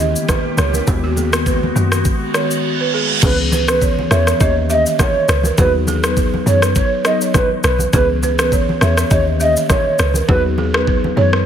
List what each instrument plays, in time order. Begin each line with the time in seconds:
Already playing: log drum bass D#2, ambient pad D#3 A#3 C#4 G4
0.00 marimba D#3 A#3 C#4 G4, balafon D#5
0.16 shaker
0.29 balafon B4, kick, cross-stick, high conga, low conga, shaker
0.57 log drum bass C#2, balafon C#5, cross-stick, high conga, low conga, shaker
0.73 balafon A#4, high conga, shaker
0.87 log drum bass D#2, marimba D#3 G#3 B3 F#4, ambient pad G#3 B3 F#4, kick, low conga, shaker
1.04 balafon F#4
1.17 balafon G#4, high conga, shaker
1.33 marimba D#3 G#3 B3 F#4, cross-stick, shaker
1.46 balafon B4, kick, shaker
1.63 high conga
1.75 log drum bass F#2, marimba D#3 G#3 B3 F#4, high conga, shaker
1.92 cross-stick, shaker
2.05 kick, reverse cymbal, shaker
2.34 marimba D#3 G#3 B3 F#4, balafon C#5, cross-stick, shaker
2.51 shaker
2.81 balafon B4
2.94 balafon G#4
3.22 log drum bass C#2, marimba E3 B3 C#4 G#4, balafon G#4, soft synth lead B4, kick, crash, low conga, shaker
3.52 balafon B4, high conga, shaker
3.68 marimba E3 B3 C#4 G#4, soft synth lead B4, cross-stick, shaker
3.81 balafon C#5, kick, shaker
3.99 high conga
4.11 log drum bass E2, marimba E3 B3 C#4 G#4, soft synth lead C#5, balafon E5, cross-stick, high conga, shaker
4.27 balafon C#5, cross-stick, shaker
4.40 log drum bass D#2, marimba D#3 A#3 C#4 G4, soft synth lead C#5, balafon D#5, kick, shaker
4.70 marimba D#3 A#3 C#4 G4, soft synth lead D#5, balafon E5, shaker
4.86 balafon D#5, shaker
4.99 balafon C#5, soft synth lead C#5, kick, cross-stick, high conga, low conga, shaker
5.29 log drum bass C#2, balafon B4, cross-stick, shaker
5.43 balafon A#4, high conga, shaker
5.58 log drum bass D#2, marimba F#3 B3 D#4 G#4, balafon F#4, soft synth lead B4, kick, low conga, shaker
5.87 balafon G#4, high conga, shaker
6.04 marimba F#3 B3 D#4 G#4, balafon G#4, soft synth lead B4, cross-stick, shaker
6.17 balafon B4, kick, shaker
6.34 high conga
6.46 log drum bass F#2, marimba F#3 B3 D#4 G#4, balafon C#5, soft synth lead C#5, high conga, shaker
6.62 balafon B4, cross-stick, shaker
6.75 balafon C#5, soft synth lead C#5, kick, shaker
7.05 marimba F#3 B3 D#4 G#4, balafon D#5, soft synth lead D#5, cross-stick, shaker
7.21 balafon C#5, shaker
7.34 soft synth lead B4, kick, cross-stick, high conga, low conga, shaker
7.64 log drum bass B1, balafon B4, soft synth lead B4, cross-stick, shaker
7.79 high conga, shaker
7.93 log drum bass C#2, marimba E3 B3 C#4 G#4, balafon G#4, soft synth lead B4, kick, low conga, shaker
8.23 balafon B4, high conga, shaker
8.39 marimba E3 B3 C#4 G#4, balafon B4, soft synth lead B4, cross-stick, shaker
8.52 balafon C#5, kick, shaker
8.69 high conga
8.81 log drum bass E2, marimba E3 B3 C#4 G#4, soft synth lead C#5, balafon E5, cross-stick, high conga, shaker
8.97 balafon C#5, cross-stick, shaker
9.11 log drum bass D#2, marimba D#3 A#3 C#4 G4, soft synth lead C#5, balafon D#5, kick, shaker
9.40 marimba D#3 A#3 C#4 G4, soft synth lead D#5, balafon E5, shaker
9.57 balafon D#5, shaker
9.70 balafon C#5, soft synth lead C#5, kick, cross-stick, high conga, low conga, shaker
9.99 log drum bass C#2, balafon B4, cross-stick, shaker
10.14 balafon A#4, high conga, shaker
10.28 log drum bass D#2, marimba F#3 B3 D#4 G#4, balafon F#4, soft synth lead B4, kick, low conga
10.58 balafon G#4, high conga
10.74 marimba F#3 B3 D#4 G#4, balafon G#4, soft synth lead B4, cross-stick
10.87 balafon B4, kick
11.04 high conga
11.16 log drum bass F#2, marimba F#3 B3 D#4 G#4, balafon C#5, soft synth lead C#5, high conga
11.33 balafon B4, cross-stick